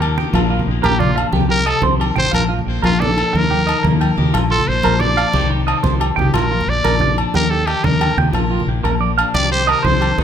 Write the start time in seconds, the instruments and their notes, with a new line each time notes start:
Already playing: fingered electric bass D#2, clean electric guitar D#3 A#3 D#4, trumpet A#4
0.00 clean electric guitar G4, low agogo
0.18 clean electric guitar G4 G5, low conga
0.33 fingered electric bass A#1, clean electric guitar A#2 F3 A#3 D4 F4, high conga, low agogo
0.50 clean electric guitar F4
0.59 low conga
0.67 fingered electric bass A#1, clean electric guitar A#3
0.83 fingered electric bass A#1, clean electric guitar F3 A#4, trumpet G4, high conga, low agogo
0.99 trumpet F4, clean electric guitar D5, low conga
1.16 clean electric guitar D4 F5, low agogo
1.33 fingered electric bass C2, clean electric guitar C3 G4, high conga
1.41 low conga
1.49 clean electric guitar G4, trumpet A#4
1.66 clean electric guitar C4 D#5, trumpet A4, low agogo
1.82 fingered electric bass C2, clean electric guitar D#3 C5, high conga, low conga
2.00 clean electric guitar G4, low conga, low agogo
2.16 fingered electric bass A1, clean electric guitar C4 G5, trumpet C5, low conga
2.25 clean electric guitar D#4
2.31 fingered electric bass A#1, clean electric guitar A#2 F4, trumpet A#4, high conga, low agogo
2.49 clean electric guitar F4
2.59 low conga
2.67 fingered electric bass A#1, clean electric guitar A#3
2.82 fingered electric bass A#1, clean electric guitar F3 A#4, trumpet F4, high conga, low agogo
3.00 trumpet A4, clean electric guitar D5, low conga
3.18 clean electric guitar D4, low agogo
3.33 fingered electric bass D#2, clean electric guitar D#3, trumpet A#4, muted clean electric guitar stroke, high conga
3.44 low conga
3.51 clean electric guitar G4
3.67 clean electric guitar D#4 D#5, low agogo
3.83 fingered electric bass D#2, clean electric guitar A#3 A#4, high conga, low conga
4.01 clean electric guitar G4, low conga, low agogo
4.17 fingered electric bass D#2, clean electric guitar G4, low conga
4.33 fingered electric bass A#1, clean electric guitar A#2 F4, high conga, low agogo
4.51 clean electric guitar F4, trumpet A4
4.59 low conga
4.68 fingered electric bass A#1, clean electric guitar A#3, trumpet C5
4.83 fingered electric bass A#1, clean electric guitar F3 A#4, high conga, low agogo
4.99 clean electric guitar D5, trumpet D5, low conga
5.17 clean electric guitar D4 F5, low agogo
5.33 fingered electric bass C2, clean electric guitar C3 D#3 C4 D#4 G4, high conga
5.41 low conga
5.50 clean electric guitar G4
5.67 clean electric guitar C4 D#5, low agogo
5.83 fingered electric bass C2, clean electric guitar D#3 C5, high conga, low conga
6.00 clean electric guitar G4, low conga, low agogo
6.16 fingered electric bass C2, trumpet G4, clean electric guitar G5, muted clean electric guitar stroke, low conga
6.34 fingered electric bass A#1, clean electric guitar A#2 F4, trumpet A#4, high conga, low agogo
6.51 clean electric guitar F4
6.61 low conga
6.67 fingered electric bass A#1, trumpet D5, low conga
6.71 muted clean electric guitar stroke
6.84 fingered electric bass A#1, clean electric guitar F3 A#4, high conga, low agogo
6.93 low conga
7.00 clean electric guitar D5, low conga
7.18 clean electric guitar D4, low conga, low agogo
7.34 fingered electric bass D#2, clean electric guitar D#3 G4, trumpet A#4, high conga
7.50 clean electric guitar G4, trumpet A4
7.59 low conga
7.66 clean electric guitar D#4, trumpet G4, muted clean electric guitar stroke, low agogo
7.84 fingered electric bass D#2, clean electric guitar D#3, trumpet A#4, muted clean electric guitar stroke, high conga, low conga
8.01 clean electric guitar D3 G4, low agogo
8.17 fingered electric bass D#2, clean electric guitar C3 G5, low conga
8.32 fingered electric bass A#1, clean electric guitar A#2 F4, high conga, low agogo
8.51 clean electric guitar F4
8.60 low conga
8.67 fingered electric bass A#1, clean electric guitar A#3
8.84 fingered electric bass A#1, clean electric guitar F3 A#4, high conga, low agogo
9.01 clean electric guitar D5
9.18 clean electric guitar D4 F5, low agogo
9.34 fingered electric bass C2, clean electric guitar C3 D#3 C4 D#4 G4, trumpet D5, high conga
9.38 clean electric guitar G4
9.51 clean electric guitar G4, trumpet C5
9.67 clean electric guitar C4 D#5, trumpet A#4, low agogo
9.83 fingered electric bass C2, clean electric guitar D#3 C5, trumpet C5, high conga, low conga
10.01 clean electric guitar G4, low conga, low agogo
10.18 fingered electric bass C2, clean electric guitar D#4, low conga